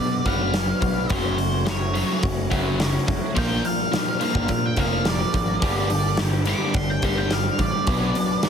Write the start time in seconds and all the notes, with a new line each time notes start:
Already playing: B2 F#3 B3 D4 F#4 B4 D5
0.00 F#3
0.25 F#1 B2 F#3 B3 D4 F#4 B4 F5, kick, open hi-hat
0.54 B2 F#3 B3 D4 F#4 B4, snare, open hi-hat
0.68 B3 D4 F#4 B4
0.81 B1 B2 F#3 B3 D4 F#4 B4, kick, open hi-hat
0.96 B3 D4 F#4 B4
1.10 F#1 F#2 C#3 F#3 A3 C#4 F#4 C5, kick, open hi-hat
1.38 F#2 C#3 F#3 A3 C#4, open hi-hat
1.42 F#4
1.66 F#2 C#3 F#3 A3 C#4 F#4 C#5, snare, open hi-hat
1.81 F#3 A3 C#4 F#4
1.94 F#2 C#3 F#3, muted clean electric guitar stroke, open hi-hat
2.09 F#3 A3 C#4 F#4
2.22 F#1 F#2 C#3, kick, open hi-hat
2.50 F#1 F#2 C#3 F#3 A3 C#4 F#4, kick, open hi-hat
2.79 F#2 C#3 F#3 A3 C#4 F#4, snare, open hi-hat
2.93 F#3 A3 C#4 F#4
3.06 F#1 F#2 C#3 F#3 A3 C#4 F#4, kick, open hi-hat
3.20 F#3 A3 C#4 F#4
3.34 A#1 A#2 F3 A#3 D4 F4 A#4, kick, open hi-hat
3.38 G5
3.63 A#2 F3 A#3 D4 F4 A#4 F5, open hi-hat
3.91 A#2 F3 A#3 D4 F4 A#4, snare, open hi-hat
4.06 A#3 D4 F4 A#4
4.19 A#2 F3 A#3 F5, muted clean electric guitar stroke, open hi-hat
4.35 G1 A#3 D4 F4 A#4, kick
4.48 A#2 F3 F5, kick, open hi-hat
4.66 G5
4.76 F1 A#2 F3 A#3 D4 F4 A#4 F5, kick, open hi-hat
5.05 A#2 F3 A#3 D4 F4 A#4, snare, open hi-hat
5.09 D5
5.19 A#3 D4 F4 A#4
5.33 G#1 A#2 F3 A#3 D4 F4 A#4, kick, open hi-hat
5.48 A#3 D4 F4 A#4
5.61 G1 G2 D3 G3 A#3 D4 G4, kick, open hi-hat
5.90 G2 D3 G3 A#3 D4 G4, open hi-hat
6.17 G2 D3 G3 A#3 D4 G4, snare, open hi-hat
6.32 G3 A#3 D4 G4
6.45 G2 D3 G3 D6, muted clean electric guitar stroke, open hi-hat
6.61 G3 A#3 D4 G4
6.74 G1 G2 D3 C6, kick, open hi-hat
6.90 G5
7.02 G1 G2 D3 G3 A#3 D4 G4 C6, kick, open hi-hat
7.18 G5
7.31 G2 D3 G3 A#3 D4 G4 F5, snare, open hi-hat
7.44 G3 A#3 D4 G4
7.58 A1 G2 D3 G3 A#3 D4 G4 D5, kick, open hi-hat
7.73 G3 A#3 D4 G4
7.87 B1 B2 F#3 B3 D4 F#4 B4, kick, open hi-hat
8.14 B2 F#3 B3 D4 F#4 B4, open hi-hat
8.42 B2 F#3 B3 D4 F#4 B4, snare, open hi-hat